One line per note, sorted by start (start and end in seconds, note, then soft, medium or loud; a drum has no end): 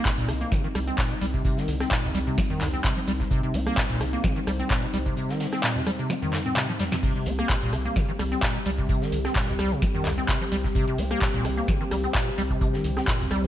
0.00 13.47 G3 medium
0.00 13.47 C4 medium
0.00 7.01 D#4 medium
0.05 0.12 A#2 medium
0.05 kick loud
0.05 snare loud
0.05 clap loud
0.05 closed hi-hat medium
0.05 shaker soft
0.18 0.25 C2 medium
0.18 0.30 A#2 loud
0.18 shaker soft
0.29 0.44 C2 loud
0.29 0.33 D3 medium
0.29 cross-stick medium
0.29 closed hi-hat medium
0.29 open hi-hat medium
0.29 shaker medium
0.41 0.53 A#3 medium
0.41 shaker soft
0.52 0.62 C3 loud
0.52 kick loud
0.52 snare medium
0.52 closed hi-hat medium
0.52 shaker soft
0.64 0.68 D#3 medium
0.64 shaker soft
0.75 0.91 C2 loud
0.75 0.79 G3 medium
0.75 cross-stick medium
0.75 closed hi-hat medium
0.75 open hi-hat loud
0.75 shaker medium
0.87 0.96 C4 medium
0.87 closed hi-hat soft
0.87 shaker soft
0.98 1.12 A#2 medium
0.98 kick loud
0.98 snare loud
0.98 clap loud
0.98 closed hi-hat medium
0.98 shaker soft
1.11 1.14 C3 medium
1.11 shaker soft
1.21 1.37 C2 medium
1.21 1.26 G3 loud
1.21 closed hi-hat medium
1.21 open hi-hat medium
1.21 shaker medium
1.34 1.43 C3 medium
1.34 kick medium
1.34 shaker soft
1.45 1.59 C3 medium
1.45 kick loud
1.45 closed hi-hat medium
1.45 shaker soft
1.57 1.69 D#3 medium
1.57 snare medium
1.57 shaker soft
1.68 1.84 C2 loud
1.68 1.75 D3 loud
1.68 closed hi-hat medium
1.68 open hi-hat loud
1.68 shaker medium
1.80 1.89 C4 medium
1.80 cross-stick medium
1.80 snare medium
1.80 shaker soft
1.91 2.05 A#2 medium
1.91 kick loud
1.91 snare loud
1.91 clap loud
1.91 closed hi-hat medium
1.91 shaker soft
2.03 2.11 C2 medium
2.03 2.10 C3 medium
2.03 snare soft
2.03 mid tom medium
2.03 shaker soft
2.15 2.30 C2 loud
2.15 2.19 G3 loud
2.15 closed hi-hat medium
2.15 open hi-hat medium
2.15 shaker medium
2.27 2.39 C3 medium
2.27 shaker soft
2.38 2.42 D#4 loud
2.38 kick loud
2.38 snare medium
2.38 closed hi-hat medium
2.38 shaker soft
2.50 2.62 D#3 medium
2.50 closed hi-hat soft
2.50 mid tom medium
2.50 shaker soft
2.61 2.77 C2 loud
2.61 2.68 D3 loud
2.61 snare soft
2.61 clap medium
2.61 closed hi-hat medium
2.61 mid tom loud
2.61 open hi-hat loud
2.61 shaker medium
2.73 2.82 C4 medium
2.73 shaker soft
2.84 2.95 C3 medium
2.84 kick loud
2.84 snare loud
2.84 clap loud
2.84 closed hi-hat medium
2.84 shaker soft
2.97 3.00 F3 medium
2.97 closed hi-hat soft
2.97 shaker soft
3.07 3.23 C2 medium
3.07 3.12 G3 loud
3.07 closed hi-hat medium
3.07 open hi-hat medium
3.07 shaker medium
3.20 3.24 C3 medium
3.20 kick medium
3.20 snare soft
3.20 shaker soft
3.31 3.41 C3 loud
3.31 kick loud
3.31 closed hi-hat medium
3.31 shaker soft
3.43 3.56 C3 medium
3.43 shaker soft
3.54 3.70 C2 loud
3.54 3.61 C4 medium
3.54 closed hi-hat medium
3.54 open hi-hat loud
3.54 shaker medium
3.67 3.75 A#3 loud
3.67 cross-stick medium
3.67 shaker soft
3.77 3.84 A#2 medium
3.77 kick loud
3.77 snare loud
3.77 clap loud
3.77 closed hi-hat medium
3.77 shaker soft
3.90 3.97 C2 medium
3.90 4.02 A#2 loud
3.90 shaker soft
4.01 4.16 C2 loud
4.01 4.05 D3 medium
4.01 cross-stick medium
4.01 closed hi-hat medium
4.01 open hi-hat medium
4.01 shaker medium
4.13 4.25 A#3 medium
4.13 shaker soft
4.24 4.34 C3 loud
4.24 kick loud
4.24 snare medium
4.24 closed hi-hat medium
4.24 shaker soft
4.36 4.40 D#3 medium
4.36 shaker soft
4.47 4.63 C2 loud
4.47 4.51 G3 medium
4.47 cross-stick medium
4.47 closed hi-hat medium
4.47 open hi-hat loud
4.47 shaker medium
4.59 4.68 C4 medium
4.59 closed hi-hat soft
4.59 shaker soft
4.70 4.84 A#2 medium
4.70 kick loud
4.70 snare loud
4.70 clap loud
4.70 closed hi-hat loud
4.70 shaker soft
4.83 4.86 C3 medium
4.83 shaker soft
4.94 5.09 C2 medium
4.94 4.98 G3 loud
4.94 open hi-hat medium
4.94 shaker medium
5.06 5.15 C3 medium
5.06 kick medium
5.06 shaker soft
5.17 5.31 C3 medium
5.17 closed hi-hat medium
5.17 shaker soft
5.29 5.41 D#3 medium
5.29 snare medium
5.29 shaker soft
5.40 5.47 D3 loud
5.40 snare loud
5.40 closed hi-hat medium
5.40 open hi-hat loud
5.40 shaker medium
5.53 5.62 C4 medium
5.53 cross-stick medium
5.53 snare medium
5.53 shaker soft
5.63 5.77 A#2 medium
5.63 snare loud
5.63 clap loud
5.63 closed hi-hat medium
5.63 shaker soft
5.76 5.82 C3 medium
5.76 snare soft
5.76 mid tom medium
5.76 shaker soft
5.86 5.91 G3 loud
5.86 cross-stick medium
5.86 closed hi-hat medium
5.86 open hi-hat medium
5.86 shaker medium
5.99 6.11 C3 medium
5.99 shaker soft
6.10 6.14 D#4 loud
6.10 snare medium
6.10 closed hi-hat medium
6.10 high tom medium
6.10 shaker soft
6.22 6.35 D#3 medium
6.22 closed hi-hat soft
6.22 mid tom medium
6.22 high tom medium
6.22 shaker soft
6.33 6.40 D3 loud
6.33 snare loud
6.33 clap medium
6.33 closed hi-hat medium
6.33 mid tom medium
6.33 open hi-hat loud
6.33 shaker medium
6.46 6.55 C4 medium
6.46 mid tom medium
6.46 shaker soft
6.56 6.67 C3 medium
6.56 clap loud
6.56 closed hi-hat medium
6.56 mid tom medium
6.56 shaker soft
6.69 6.73 F3 medium
6.69 mid tom medium
6.69 shaker soft
6.79 6.84 G3 loud
6.79 snare loud
6.79 closed hi-hat medium
6.79 mid tom loud
6.79 open hi-hat medium
6.79 shaker medium
6.92 6.96 C3 medium
6.92 snare loud
6.92 snare medium
6.92 closed hi-hat medium
6.92 mid tom medium
6.92 shaker soft
7.03 7.13 C3 loud
7.03 13.47 G4 medium
7.03 kick loud
7.03 closed hi-hat medium
7.03 crash medium
7.03 shaker soft
7.15 7.28 C3 medium
7.15 shaker soft
7.26 7.42 C2 loud
7.26 7.33 C4 medium
7.26 closed hi-hat medium
7.26 open hi-hat loud
7.26 shaker medium
7.39 7.48 A#3 loud
7.39 cross-stick medium
7.39 shaker soft
7.49 7.56 A#2 medium
7.49 kick loud
7.49 snare loud
7.49 clap loud
7.49 closed hi-hat medium
7.49 shaker soft
7.62 7.69 C2 medium
7.62 7.74 A#2 loud
7.62 shaker soft
7.72 7.89 C2 loud
7.72 7.77 D3 medium
7.72 cross-stick medium
7.72 closed hi-hat medium
7.72 open hi-hat medium
7.72 shaker medium
7.85 7.98 A#3 medium
7.85 shaker soft
7.96 8.06 C3 loud
7.96 kick loud
7.96 snare medium
7.96 closed hi-hat medium
7.96 shaker soft
8.09 8.12 D#3 medium
8.09 shaker soft
8.19 8.35 C2 loud
8.19 8.23 G3 medium
8.19 cross-stick medium
8.19 closed hi-hat medium
8.19 open hi-hat loud
8.19 shaker medium
8.32 8.41 C4 medium
8.32 closed hi-hat soft
8.32 shaker soft
8.43 8.56 A#2 medium
8.43 kick loud
8.43 snare loud
8.43 clap loud
8.43 closed hi-hat loud
8.43 shaker soft
8.55 8.59 C3 medium
8.55 shaker soft
8.65 8.82 C2 medium
8.65 8.70 G3 loud
8.65 closed hi-hat medium
8.65 open hi-hat loud
8.65 shaker medium
8.78 8.87 C3 medium
8.78 kick medium
8.78 shaker soft
8.89 9.03 C3 medium
8.89 kick loud
8.89 closed hi-hat loud
8.89 shaker soft
9.02 9.14 D#3 medium
9.02 snare medium
9.02 shaker soft
9.12 9.28 C2 loud
9.12 9.19 D3 loud
9.12 closed hi-hat medium
9.12 open hi-hat loud
9.12 shaker medium
9.25 9.34 C4 medium
9.25 cross-stick medium
9.25 snare medium
9.25 shaker soft
9.35 9.50 A#2 medium
9.35 kick loud
9.35 snare loud
9.35 clap loud
9.35 closed hi-hat medium
9.35 shaker soft
9.48 9.55 C2 medium
9.48 9.54 C3 medium
9.48 snare medium
9.48 mid tom medium
9.48 shaker soft
9.59 9.75 C2 loud
9.59 9.73 G3 loud
9.59 cross-stick medium
9.59 closed hi-hat medium
9.59 open hi-hat loud
9.59 shaker medium
9.71 9.84 C3 medium
9.71 shaker soft
9.82 9.86 D#4 loud
9.82 kick loud
9.82 snare medium
9.82 closed hi-hat medium
9.82 shaker soft
9.94 10.07 D#3 medium
9.94 closed hi-hat soft
9.94 mid tom medium
9.94 shaker soft
10.05 10.21 C2 loud
10.05 10.12 D3 loud
10.05 snare soft
10.05 clap medium
10.05 closed hi-hat medium
10.05 mid tom medium
10.05 open hi-hat loud
10.05 shaker medium
10.18 10.27 C4 medium
10.18 shaker soft
10.29 10.39 C3 medium
10.29 kick loud
10.29 snare loud
10.29 clap loud
10.29 closed hi-hat loud
10.29 shaker soft
10.41 10.45 F3 medium
10.41 closed hi-hat soft
10.41 shaker soft
10.52 10.68 C2 medium
10.52 10.56 G3 loud
10.52 closed hi-hat medium
10.52 open hi-hat loud
10.52 shaker medium
10.64 10.68 C3 medium
10.64 kick medium
10.64 snare soft
10.64 shaker soft
10.75 10.85 C3 loud
10.75 kick loud
10.75 closed hi-hat loud
10.75 shaker soft
10.88 11.00 C3 medium
10.88 shaker soft
10.98 11.14 C2 loud
10.98 11.05 C4 medium
10.98 closed hi-hat medium
10.98 open hi-hat loud
10.98 shaker medium
11.11 11.20 A#3 loud
11.11 cross-stick medium
11.11 shaker soft
11.21 11.28 A#2 medium
11.21 kick loud
11.21 snare loud
11.21 clap loud
11.21 closed hi-hat medium
11.21 shaker soft
11.34 11.41 C2 medium
11.34 11.46 A#2 loud
11.34 shaker soft
11.45 11.61 C2 loud
11.45 11.49 D3 medium
11.45 cross-stick medium
11.45 closed hi-hat medium
11.45 open hi-hat loud
11.45 shaker medium
11.57 11.70 A#3 medium
11.57 shaker soft
11.68 11.78 C3 loud
11.68 kick loud
11.68 snare medium
11.68 closed hi-hat loud
11.68 shaker soft
11.81 11.84 D#3 medium
11.81 shaker soft
11.91 12.07 C2 loud
11.91 11.96 G3 medium
11.91 cross-stick medium
11.91 closed hi-hat medium
11.91 open hi-hat loud
11.91 shaker medium
12.03 12.13 C4 medium
12.03 closed hi-hat soft
12.03 shaker soft
12.15 12.29 A#2 medium
12.15 kick loud
12.15 snare loud
12.15 clap loud
12.15 closed hi-hat medium
12.15 shaker soft
12.27 12.31 C3 medium
12.27 shaker soft
12.38 12.54 C2 medium
12.38 12.42 G3 loud
12.38 closed hi-hat medium
12.38 open hi-hat loud
12.38 shaker medium
12.50 12.59 C3 medium
12.50 kick medium
12.50 shaker soft
12.61 12.75 C3 medium
12.61 kick loud
12.61 closed hi-hat medium
12.61 shaker soft
12.73 12.86 D#3 medium
12.73 snare medium
12.73 shaker soft
12.84 13.00 C2 loud
12.84 12.91 D3 loud
12.84 closed hi-hat medium
12.84 open hi-hat loud
12.84 shaker medium
12.97 13.06 C4 medium
12.97 cross-stick medium
12.97 snare medium
12.97 shaker soft
13.07 13.22 A#2 medium
13.07 kick loud
13.07 snare loud
13.07 clap loud
13.07 closed hi-hat medium
13.07 shaker soft
13.20 13.27 C2 medium
13.20 13.26 C3 medium
13.20 snare soft
13.20 mid tom medium
13.20 shaker soft
13.31 13.47 C2 loud
13.31 13.45 G3 loud
13.31 cross-stick medium
13.31 closed hi-hat medium
13.31 open hi-hat medium
13.31 shaker medium
13.43 13.47 C3 medium
13.43 shaker soft